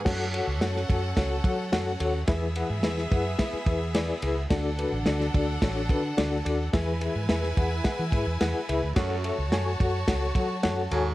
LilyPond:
<<
  \new Staff \with { instrumentName = "Reed electric piano" } { \time 4/4 \key fis \minor \tempo 4 = 108 <fis' a' cis'' fis''>8 <fis' a' cis'' fis''>8 <fis' a' cis'' fis''>8 <fis' a' cis'' fis''>8 <fis' a' cis'' fis''>8 <fis' a' cis'' fis''>8 <fis' a' cis'' fis''>8 <fis' a' cis'' fis''>8 | <e' gis' b' e''>8 <e' gis' b' fis''>8 <e' gis' b' e''>8 <e' gis' b' fis''>8 <e' gis' b' e''>8 <e' gis' b' e''>8 <e' gis' b' d''>8 <e' gis' b' e''>8 | <d' fis' a' d''>8 <d' fis' a' b'>8 <d' fis' a' d''>8 <d' fis' a' d''>8 <d' fis' a' cis''>8 <d' fis' a' b'>8 <d' fis' a' d''>8 <d' fis' a' d''>8 | <e' gis' b' e''>8 <e' gis' b' e''>8 <e' gis' b' e''>8 <e' gis' b' fis''>8 <e' gis' b' fis''>8 <e' gis' b' e''>8 <e' gis' b' fis''>8 <e' gis' b' e''>8 |
<fis' a' cis'' fis''>8 <fis' a' cis'' e''>8 <fis' a' cis'' gis''>8 <fis' a' cis'' fis''>8 <fis' a' cis'' fis''>8 <fis' a' cis'' fis''>8 <fis' a' cis'' fis''>8 <fis' a' cis'' gis''>8 | }
  \new Staff \with { instrumentName = "Reed electric piano" } { \clef bass \time 4/4 \key fis \minor r1 | e4. r2 r8 | d4. r2 r8 | e4. r2 r8 |
r1 | }
  \new Staff \with { instrumentName = "Violin section" } { \time 4/4 \key fis \minor <cis' a' fis''>1 | <b gis' e''>1 | <d' a' fis''>1 | <e' b' gis''>1 |
<fis' cis'' a''>1 | }
  \new Staff \with { instrumentName = "Baritone saxophone" } { \clef bass \time 4/4 \key fis \minor r1 | r1 | r1 | r1 |
fis,8. r2 r8. gis,8 | }
  \new Staff \with { instrumentName = "Fingered electric bass" } { \clef bass \time 4/4 \key fis \minor fis,8. cis,16 fis,8 fis,8 cis,8 fis8 fis,8 dis,8 | e,8. gis,16 e,8 fis,8 r8 e,4 cis,8 | d,8. a,,16 d,8 d,8 a,,8 d8 d,8 dis,8 | e,8. gis,16 e,8 e,8 r16 e16 gis,16 e,16 e,16 r16 cis,16 d,16 |
fis,8. cis,16 fis,8 fis,8 cis,8 fis8 fis,8 dis,8 | }
  \new DrumStaff \with { instrumentName = "Drums" } \drummode { \time 4/4 <cymc bd sn>8 cymr8 <cymr sn>16 sn16 <bd cymr>8 <bd cymr sn>8 <bd cymr>8 <cymr sn>8 cymr8 | <bd cymr sn>8 cymr8 <cymr sn>16 sn16 <bd cymr>8 <bd cymr sn>8 <bd cymr>8 <cymr sn>8 cymr8 | <bd cymr sn>8 cymr8 <cymr sn>16 sn16 <bd cymr>8 <bd cymr sn>8 <bd cymr>8 <cymr sn>8 cymr8 | <bd cymr sn>8 cymr8 <cymr sn>16 sn16 <bd cymr>8 <bd cymr sn>8 <bd cymr>8 <cymr sn>8 cymr8 |
<bd cymr sn>8 cymr8 <cymr sn>8 <bd cymr>8 <bd cymr sn>8 <bd cymr>8 <cymr sn>8 cymr8 | }
>>